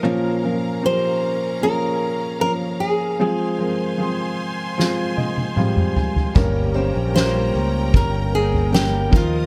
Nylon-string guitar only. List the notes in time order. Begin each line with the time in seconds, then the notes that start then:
0.86 C5
1.63 A#4
2.41 A#4
2.80 G#4
4.27 G4
7.16 C5
7.97 A#4
8.35 G#4
8.74 G4
9.16 F4